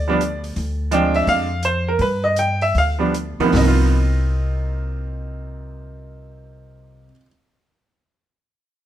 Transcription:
Already playing: upright bass D2
0.08 grand piano F3 G3 B3 D4
0.12 grand piano D5
0.21 closed hi-hat
0.44 open hi-hat
0.56 upright bass D2, kick, open hi-hat
0.91 grand piano F3 G#3 C4 D4 G5, closed hi-hat
1.14 grand piano E5, open hi-hat
1.27 upright bass F2, grand piano F5, kick, open hi-hat
1.63 grand piano C5, closed hi-hat
1.88 grand piano A#4
1.99 upright bass G2, grand piano B4, kick, open hi-hat
2.24 grand piano D#5
2.36 grand piano G5, closed hi-hat
2.61 grand piano E5, open hi-hat
2.75 upright bass D2, grand piano F5, kick, open hi-hat
2.99 grand piano F3 G3 B3 D4
3.14 closed hi-hat
3.39 grand piano C2 D#3 F3 A#3 B3, muted upright bass stroke, open hi-hat
3.43 grand piano C3
3.49 upright bass C2, grand piano A#3
3.55 grand piano C4 D#5, snare, floor tom, open hi-hat
3.62 grand piano D#4
3.68 grand piano F4

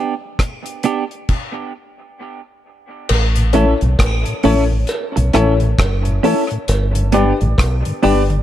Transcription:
Already playing: clean electric guitar B3 D4 G4
0.39 kick, cross-stick, closed hi-hat
0.66 closed hi-hat
0.83 clean electric guitar B3 D4 G4, closed hi-hat
1.11 closed hi-hat
1.29 kick, crash
3.09 fingered electric bass A1, crash, cowbell
3.36 tonewheel organ A2, closed hi-hat
3.53 tonewheel organ E3 A3 C#4, upright piano C#4 E4 A4 C#5, clean electric guitar C#4 E4 A4, closed hi-hat
3.81 fingered electric bass B1, tonewheel organ A2, closed hi-hat
3.99 fingered electric bass A1, kick, cross-stick, closed hi-hat, cowbell
4.25 tonewheel organ A2, closed hi-hat
4.43 fingered electric bass A1, tonewheel organ E3 A3 C#4, upright piano C#4 E4 A4 C#5, clean electric guitar C#4 E4 A4, open hi-hat
4.72 tonewheel organ A2
4.87 closed hi-hat, cowbell
5.16 fingered electric bass B1, tonewheel organ A2, muted clean electric guitar stroke, closed hi-hat
5.33 fingered electric bass A1, tonewheel organ E3 A3 C#4, upright piano C#4 E4 A4 C#5, clean electric guitar C#4 E4 A4, cross-stick, closed hi-hat
5.60 tonewheel organ A2, upright piano A4 C#5, closed hi-hat
5.78 fingered electric bass F#1, kick, cross-stick, closed hi-hat, cowbell
6.05 tonewheel organ A2, closed hi-hat
6.23 tonewheel organ E3 A3 C#4, clean electric guitar C#4 E4 A4, upright piano C#4 E4 A4 C#5, open hi-hat
6.51 tonewheel organ A2, closed hi-hat
6.68 fingered electric bass G1, closed hi-hat, cowbell
6.95 tonewheel organ G2 D3, closed hi-hat
7.12 tonewheel organ G3 B3 D4, clean electric guitar B3 D4 G4, upright piano D4 G4 B4 D5, closed hi-hat
7.41 fingered electric bass A1, tonewheel organ G2 D3, closed hi-hat
7.58 fingered electric bass B1, kick, cross-stick, closed hi-hat, cowbell
7.85 tonewheel organ G2 D3, closed hi-hat
8.02 fingered electric bass G1, tonewheel organ G3 B3 D4, clean electric guitar B3 D4 G4, upright piano D4 G4 B4 D5, open hi-hat
8.30 tonewheel organ G2 D3, muted clean electric guitar stroke, closed hi-hat

